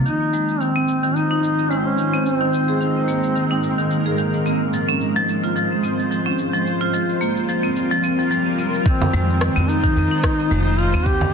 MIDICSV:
0, 0, Header, 1, 6, 480
1, 0, Start_track
1, 0, Key_signature, -4, "minor"
1, 0, Tempo, 550459
1, 48, Time_signature, 4, 2, 24, 8
1, 9886, End_track
2, 0, Start_track
2, 0, Title_t, "Ambient pad"
2, 0, Program_c, 0, 92
2, 50, Note_on_c, 0, 63, 72
2, 50, Note_on_c, 0, 72, 88
2, 51, Note_on_c, 0, 56, 76
2, 51, Note_on_c, 0, 65, 77
2, 1949, Note_off_c, 0, 72, 0
2, 1950, Note_off_c, 0, 65, 0
2, 1961, Note_on_c, 0, 58, 73
2, 1964, Note_on_c, 0, 70, 88
2, 3854, Note_off_c, 0, 63, 0
2, 3865, Note_off_c, 0, 58, 0
2, 3867, Note_off_c, 0, 70, 0
2, 3887, Note_on_c, 0, 65, 74
2, 3888, Note_on_c, 0, 72, 86
2, 5774, Note_off_c, 0, 56, 0
2, 5788, Note_off_c, 0, 65, 0
2, 5788, Note_off_c, 0, 72, 0
2, 5805, Note_on_c, 0, 70, 87
2, 5806, Note_on_c, 0, 55, 83
2, 5807, Note_on_c, 0, 60, 77
2, 5807, Note_on_c, 0, 65, 72
2, 7707, Note_off_c, 0, 70, 0
2, 7708, Note_off_c, 0, 55, 0
2, 7708, Note_off_c, 0, 60, 0
2, 7708, Note_off_c, 0, 65, 0
2, 7725, Note_on_c, 0, 63, 78
2, 7726, Note_on_c, 0, 56, 89
2, 7726, Note_on_c, 0, 65, 79
2, 7726, Note_on_c, 0, 72, 93
2, 9627, Note_off_c, 0, 63, 0
2, 9628, Note_off_c, 0, 65, 0
2, 9628, Note_off_c, 0, 72, 0
2, 9886, Note_off_c, 0, 56, 0
2, 9886, End_track
3, 0, Start_track
3, 0, Title_t, "Duduk"
3, 0, Program_c, 1, 69
3, 48, Note_on_c, 1, 63, 95
3, 530, Note_on_c, 1, 60, 82
3, 543, Note_off_c, 1, 63, 0
3, 1008, Note_on_c, 1, 63, 92
3, 1022, Note_off_c, 1, 60, 0
3, 1483, Note_on_c, 1, 61, 81
3, 1496, Note_off_c, 1, 63, 0
3, 1548, Note_on_c, 1, 60, 72
3, 1561, Note_off_c, 1, 61, 0
3, 1621, Note_on_c, 1, 61, 85
3, 1634, Note_off_c, 1, 60, 0
3, 1961, Note_off_c, 1, 61, 0
3, 1966, Note_on_c, 1, 60, 90
3, 2413, Note_off_c, 1, 60, 0
3, 2446, Note_on_c, 1, 60, 69
3, 3612, Note_off_c, 1, 60, 0
3, 7725, Note_on_c, 1, 60, 94
3, 8442, Note_on_c, 1, 63, 101
3, 8456, Note_off_c, 1, 60, 0
3, 9401, Note_on_c, 1, 65, 102
3, 9414, Note_off_c, 1, 63, 0
3, 9640, Note_on_c, 1, 67, 113
3, 9653, Note_off_c, 1, 65, 0
3, 9886, Note_off_c, 1, 67, 0
3, 9886, End_track
4, 0, Start_track
4, 0, Title_t, "Marimba"
4, 0, Program_c, 2, 12
4, 50, Note_on_c, 2, 51, 69
4, 278, Note_off_c, 2, 51, 0
4, 290, Note_on_c, 2, 56, 60
4, 364, Note_off_c, 2, 56, 0
4, 527, Note_on_c, 2, 51, 67
4, 647, Note_off_c, 2, 51, 0
4, 660, Note_on_c, 2, 60, 96
4, 762, Note_off_c, 2, 60, 0
4, 900, Note_on_c, 2, 51, 85
4, 1127, Note_off_c, 2, 51, 0
4, 1140, Note_on_c, 2, 63, 85
4, 1237, Note_off_c, 2, 63, 0
4, 1248, Note_on_c, 2, 51, 67
4, 1477, Note_off_c, 2, 51, 0
4, 1488, Note_on_c, 2, 56, 67
4, 1564, Note_off_c, 2, 56, 0
4, 1728, Note_on_c, 2, 51, 69
4, 1847, Note_off_c, 2, 51, 0
4, 1861, Note_on_c, 2, 60, 85
4, 1962, Note_off_c, 2, 60, 0
4, 2100, Note_on_c, 2, 51, 90
4, 2327, Note_off_c, 2, 51, 0
4, 2339, Note_on_c, 2, 68, 91
4, 2436, Note_off_c, 2, 68, 0
4, 2447, Note_on_c, 2, 51, 75
4, 2677, Note_off_c, 2, 51, 0
4, 2685, Note_on_c, 2, 58, 68
4, 2762, Note_off_c, 2, 58, 0
4, 2923, Note_on_c, 2, 51, 72
4, 3045, Note_off_c, 2, 51, 0
4, 3059, Note_on_c, 2, 63, 86
4, 3161, Note_off_c, 2, 63, 0
4, 3298, Note_on_c, 2, 51, 84
4, 3526, Note_off_c, 2, 51, 0
4, 3539, Note_on_c, 2, 68, 79
4, 3636, Note_off_c, 2, 68, 0
4, 3647, Note_on_c, 2, 51, 72
4, 3877, Note_off_c, 2, 51, 0
4, 3889, Note_on_c, 2, 60, 71
4, 3964, Note_off_c, 2, 60, 0
4, 4130, Note_on_c, 2, 53, 68
4, 4248, Note_off_c, 2, 53, 0
4, 4260, Note_on_c, 2, 61, 92
4, 4362, Note_off_c, 2, 61, 0
4, 4499, Note_on_c, 2, 53, 97
4, 4727, Note_off_c, 2, 53, 0
4, 4740, Note_on_c, 2, 65, 94
4, 4837, Note_off_c, 2, 65, 0
4, 4846, Note_on_c, 2, 53, 74
4, 5076, Note_off_c, 2, 53, 0
4, 5086, Note_on_c, 2, 60, 72
4, 5163, Note_off_c, 2, 60, 0
4, 5327, Note_on_c, 2, 53, 74
4, 5447, Note_off_c, 2, 53, 0
4, 5458, Note_on_c, 2, 61, 83
4, 5561, Note_off_c, 2, 61, 0
4, 5700, Note_on_c, 2, 53, 89
4, 5807, Note_off_c, 2, 53, 0
4, 5938, Note_on_c, 2, 65, 90
4, 6036, Note_off_c, 2, 65, 0
4, 6048, Note_on_c, 2, 53, 68
4, 6277, Note_off_c, 2, 53, 0
4, 6287, Note_on_c, 2, 58, 78
4, 6363, Note_off_c, 2, 58, 0
4, 6528, Note_on_c, 2, 53, 69
4, 6647, Note_off_c, 2, 53, 0
4, 6658, Note_on_c, 2, 60, 92
4, 6761, Note_off_c, 2, 60, 0
4, 6898, Note_on_c, 2, 53, 91
4, 6996, Note_off_c, 2, 53, 0
4, 7008, Note_on_c, 2, 60, 75
4, 7134, Note_off_c, 2, 60, 0
4, 7140, Note_on_c, 2, 53, 70
4, 7237, Note_off_c, 2, 53, 0
4, 7248, Note_on_c, 2, 53, 91
4, 7367, Note_off_c, 2, 53, 0
4, 7487, Note_on_c, 2, 60, 73
4, 7563, Note_off_c, 2, 60, 0
4, 7727, Note_on_c, 2, 51, 81
4, 7956, Note_off_c, 2, 51, 0
4, 7965, Note_on_c, 2, 56, 79
4, 8042, Note_off_c, 2, 56, 0
4, 8206, Note_on_c, 2, 51, 83
4, 8326, Note_off_c, 2, 51, 0
4, 8338, Note_on_c, 2, 60, 109
4, 8441, Note_off_c, 2, 60, 0
4, 8578, Note_on_c, 2, 51, 105
4, 8806, Note_off_c, 2, 51, 0
4, 8819, Note_on_c, 2, 63, 93
4, 8916, Note_off_c, 2, 63, 0
4, 8925, Note_on_c, 2, 51, 76
4, 9156, Note_off_c, 2, 51, 0
4, 9166, Note_on_c, 2, 56, 84
4, 9242, Note_off_c, 2, 56, 0
4, 9406, Note_on_c, 2, 51, 80
4, 9526, Note_off_c, 2, 51, 0
4, 9538, Note_on_c, 2, 60, 99
4, 9641, Note_off_c, 2, 60, 0
4, 9779, Note_on_c, 2, 51, 107
4, 9886, Note_off_c, 2, 51, 0
4, 9886, End_track
5, 0, Start_track
5, 0, Title_t, "Upright bass"
5, 0, Program_c, 3, 32
5, 7964, Note_on_c, 3, 41, 105
5, 8255, Note_off_c, 3, 41, 0
5, 8338, Note_on_c, 3, 41, 92
5, 8619, Note_off_c, 3, 41, 0
5, 8685, Note_on_c, 3, 41, 82
5, 8767, Note_off_c, 3, 41, 0
5, 9163, Note_on_c, 3, 29, 85
5, 9534, Note_on_c, 3, 39, 94
5, 9547, Note_off_c, 3, 29, 0
5, 9817, Note_off_c, 3, 39, 0
5, 9886, End_track
6, 0, Start_track
6, 0, Title_t, "Drums"
6, 51, Note_on_c, 9, 69, 37
6, 138, Note_off_c, 9, 69, 0
6, 291, Note_on_c, 9, 69, 73
6, 378, Note_off_c, 9, 69, 0
6, 423, Note_on_c, 9, 69, 29
6, 511, Note_off_c, 9, 69, 0
6, 531, Note_on_c, 9, 69, 38
6, 618, Note_off_c, 9, 69, 0
6, 769, Note_on_c, 9, 69, 67
6, 856, Note_off_c, 9, 69, 0
6, 903, Note_on_c, 9, 69, 29
6, 990, Note_off_c, 9, 69, 0
6, 1010, Note_on_c, 9, 69, 38
6, 1097, Note_off_c, 9, 69, 0
6, 1251, Note_on_c, 9, 69, 65
6, 1339, Note_off_c, 9, 69, 0
6, 1382, Note_on_c, 9, 69, 27
6, 1469, Note_off_c, 9, 69, 0
6, 1489, Note_on_c, 9, 69, 38
6, 1577, Note_off_c, 9, 69, 0
6, 1728, Note_on_c, 9, 69, 65
6, 1816, Note_off_c, 9, 69, 0
6, 1863, Note_on_c, 9, 69, 28
6, 1950, Note_off_c, 9, 69, 0
6, 1971, Note_on_c, 9, 69, 41
6, 2058, Note_off_c, 9, 69, 0
6, 2211, Note_on_c, 9, 69, 79
6, 2298, Note_off_c, 9, 69, 0
6, 2344, Note_on_c, 9, 69, 30
6, 2431, Note_off_c, 9, 69, 0
6, 2452, Note_on_c, 9, 69, 41
6, 2539, Note_off_c, 9, 69, 0
6, 2688, Note_on_c, 9, 69, 74
6, 2776, Note_off_c, 9, 69, 0
6, 2821, Note_on_c, 9, 69, 30
6, 2908, Note_off_c, 9, 69, 0
6, 2929, Note_on_c, 9, 69, 42
6, 3016, Note_off_c, 9, 69, 0
6, 3169, Note_on_c, 9, 69, 69
6, 3256, Note_off_c, 9, 69, 0
6, 3300, Note_on_c, 9, 69, 29
6, 3387, Note_off_c, 9, 69, 0
6, 3406, Note_on_c, 9, 69, 40
6, 3493, Note_off_c, 9, 69, 0
6, 3646, Note_on_c, 9, 69, 68
6, 3733, Note_off_c, 9, 69, 0
6, 3781, Note_on_c, 9, 69, 31
6, 3868, Note_off_c, 9, 69, 0
6, 3889, Note_on_c, 9, 69, 43
6, 3976, Note_off_c, 9, 69, 0
6, 4130, Note_on_c, 9, 69, 74
6, 4217, Note_off_c, 9, 69, 0
6, 4262, Note_on_c, 9, 69, 31
6, 4350, Note_off_c, 9, 69, 0
6, 4369, Note_on_c, 9, 69, 41
6, 4456, Note_off_c, 9, 69, 0
6, 4610, Note_on_c, 9, 69, 75
6, 4698, Note_off_c, 9, 69, 0
6, 4742, Note_on_c, 9, 69, 34
6, 4829, Note_off_c, 9, 69, 0
6, 4852, Note_on_c, 9, 69, 43
6, 4940, Note_off_c, 9, 69, 0
6, 5091, Note_on_c, 9, 69, 68
6, 5178, Note_off_c, 9, 69, 0
6, 5227, Note_on_c, 9, 69, 30
6, 5314, Note_off_c, 9, 69, 0
6, 5334, Note_on_c, 9, 69, 39
6, 5421, Note_off_c, 9, 69, 0
6, 5569, Note_on_c, 9, 69, 69
6, 5656, Note_off_c, 9, 69, 0
6, 5705, Note_on_c, 9, 69, 34
6, 5792, Note_off_c, 9, 69, 0
6, 5811, Note_on_c, 9, 69, 39
6, 5899, Note_off_c, 9, 69, 0
6, 6051, Note_on_c, 9, 69, 78
6, 6139, Note_off_c, 9, 69, 0
6, 6184, Note_on_c, 9, 69, 31
6, 6271, Note_off_c, 9, 69, 0
6, 6291, Note_on_c, 9, 69, 43
6, 6378, Note_off_c, 9, 69, 0
6, 6425, Note_on_c, 9, 69, 28
6, 6512, Note_off_c, 9, 69, 0
6, 6530, Note_on_c, 9, 69, 74
6, 6617, Note_off_c, 9, 69, 0
6, 6663, Note_on_c, 9, 69, 31
6, 6750, Note_off_c, 9, 69, 0
6, 6771, Note_on_c, 9, 69, 45
6, 6858, Note_off_c, 9, 69, 0
6, 6903, Note_on_c, 9, 69, 28
6, 6991, Note_off_c, 9, 69, 0
6, 7007, Note_on_c, 9, 69, 74
6, 7094, Note_off_c, 9, 69, 0
6, 7143, Note_on_c, 9, 69, 29
6, 7231, Note_off_c, 9, 69, 0
6, 7251, Note_on_c, 9, 69, 41
6, 7338, Note_off_c, 9, 69, 0
6, 7491, Note_on_c, 9, 69, 69
6, 7578, Note_off_c, 9, 69, 0
6, 7625, Note_on_c, 9, 69, 33
6, 7712, Note_off_c, 9, 69, 0
6, 7723, Note_on_c, 9, 36, 127
6, 7732, Note_on_c, 9, 69, 48
6, 7811, Note_off_c, 9, 36, 0
6, 7820, Note_off_c, 9, 69, 0
6, 7861, Note_on_c, 9, 64, 82
6, 7864, Note_on_c, 9, 69, 22
6, 7948, Note_off_c, 9, 64, 0
6, 7951, Note_off_c, 9, 69, 0
6, 7969, Note_on_c, 9, 69, 87
6, 8056, Note_off_c, 9, 69, 0
6, 8105, Note_on_c, 9, 69, 31
6, 8193, Note_off_c, 9, 69, 0
6, 8208, Note_on_c, 9, 37, 82
6, 8210, Note_on_c, 9, 69, 43
6, 8295, Note_off_c, 9, 37, 0
6, 8297, Note_off_c, 9, 69, 0
6, 8344, Note_on_c, 9, 69, 21
6, 8431, Note_off_c, 9, 69, 0
6, 8451, Note_on_c, 9, 69, 79
6, 8538, Note_off_c, 9, 69, 0
6, 8577, Note_on_c, 9, 36, 64
6, 8584, Note_on_c, 9, 69, 36
6, 8664, Note_off_c, 9, 36, 0
6, 8672, Note_off_c, 9, 69, 0
6, 8690, Note_on_c, 9, 69, 45
6, 8777, Note_off_c, 9, 69, 0
6, 8823, Note_on_c, 9, 69, 22
6, 8910, Note_off_c, 9, 69, 0
6, 8924, Note_on_c, 9, 36, 103
6, 8927, Note_on_c, 9, 37, 82
6, 8929, Note_on_c, 9, 69, 79
6, 9012, Note_off_c, 9, 36, 0
6, 9014, Note_off_c, 9, 37, 0
6, 9016, Note_off_c, 9, 69, 0
6, 9061, Note_on_c, 9, 69, 31
6, 9148, Note_off_c, 9, 69, 0
6, 9169, Note_on_c, 9, 69, 42
6, 9256, Note_off_c, 9, 69, 0
6, 9298, Note_on_c, 9, 69, 22
6, 9385, Note_off_c, 9, 69, 0
6, 9405, Note_on_c, 9, 69, 70
6, 9492, Note_off_c, 9, 69, 0
6, 9539, Note_on_c, 9, 69, 35
6, 9626, Note_off_c, 9, 69, 0
6, 9645, Note_on_c, 9, 36, 127
6, 9646, Note_on_c, 9, 69, 47
6, 9732, Note_off_c, 9, 36, 0
6, 9733, Note_off_c, 9, 69, 0
6, 9777, Note_on_c, 9, 64, 77
6, 9779, Note_on_c, 9, 69, 22
6, 9864, Note_off_c, 9, 64, 0
6, 9867, Note_off_c, 9, 69, 0
6, 9886, End_track
0, 0, End_of_file